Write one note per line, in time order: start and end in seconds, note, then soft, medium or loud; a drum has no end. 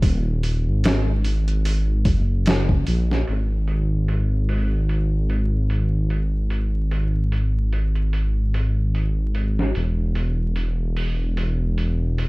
0.00 0.69 D#1 loud
0.00 kick loud
0.00 open hi-hat medium
0.43 open hi-hat medium
0.68 2.07 G#1 medium
0.84 snare loud
0.84 open hi-hat medium
1.24 open hi-hat medium
1.48 closed hi-hat soft
1.65 open hi-hat medium
2.05 2.83 F#1 medium
2.05 kick loud
2.05 open hi-hat medium
2.46 snare loud
2.46 open hi-hat medium
2.69 kick medium
2.87 3.24 A#1 medium
2.87 open hi-hat medium
3.11 snare soft
3.27 9.73 G#1 medium
3.27 open hi-hat medium
3.68 open hi-hat medium
4.08 open hi-hat medium
4.49 open hi-hat medium
4.89 open hi-hat medium
5.30 open hi-hat medium
5.70 open hi-hat medium
6.10 open hi-hat medium
6.50 open hi-hat medium
6.91 open hi-hat medium
7.32 open hi-hat medium
7.73 open hi-hat medium
7.95 closed hi-hat soft
8.13 open hi-hat medium
8.54 open hi-hat medium
8.95 open hi-hat soft
9.35 open hi-hat medium
9.59 snare soft
9.75 12.29 E1 medium
9.75 open hi-hat medium
10.15 open hi-hat medium
10.56 open hi-hat medium
10.97 open hi-hat medium
11.37 open hi-hat medium
11.78 open hi-hat medium
12.18 open hi-hat medium